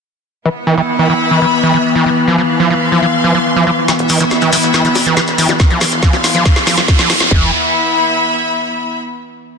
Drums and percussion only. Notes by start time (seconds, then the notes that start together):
3.88 snare, closed hi-hat, shekere
3.99 closed hi-hat
4.09 open hi-hat, shekere
4.20 closed hi-hat, shekere
4.31 snare, closed hi-hat, high bongo, shekere
4.41 closed hi-hat, shekere
4.53 open hi-hat, shekere
4.63 closed hi-hat, shekere
4.74 snare, closed hi-hat, shekere
4.85 closed hi-hat, shekere
4.95 open hi-hat, high bongo, shekere
5.06 closed hi-hat, shekere
5.17 snare, closed hi-hat, shekere
5.27 closed hi-hat, shekere
5.38 open hi-hat, shekere
5.49 closed hi-hat, high bongo, shekere
5.59 kick, snare, closed hi-hat, shekere
5.70 closed hi-hat
5.81 snare, open hi-hat, shekere
5.92 closed hi-hat, shekere
6.03 kick, snare, closed hi-hat, shekere
6.13 closed hi-hat, high bongo, shekere
6.24 snare, open hi-hat, shekere
6.34 closed hi-hat, shekere
6.45 kick, snare, closed hi-hat, shekere
6.56 snare, closed hi-hat, shekere
6.67 snare, open hi-hat, high bongo, shekere
6.77 snare, closed hi-hat, shekere
6.88 kick, snare, closed hi-hat, shekere
6.99 snare, closed hi-hat, shekere
7.10 snare, open hi-hat, shekere
7.20 snare, closed hi-hat, shekere
7.31 kick, floor tom